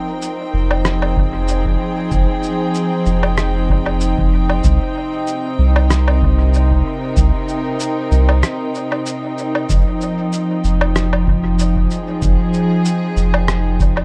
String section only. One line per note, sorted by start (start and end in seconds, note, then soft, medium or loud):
0.00 4.64 F3 medium
0.00 14.05 C4 medium
0.00 14.05 D#4 medium
0.00 1.62 A#4 medium
0.00 14.05 G5 medium
0.85 4.64 G#4 medium
4.64 9.69 C3 medium
5.83 10.66 A#4 medium
9.70 14.05 F3 medium
11.84 14.05 G#4 medium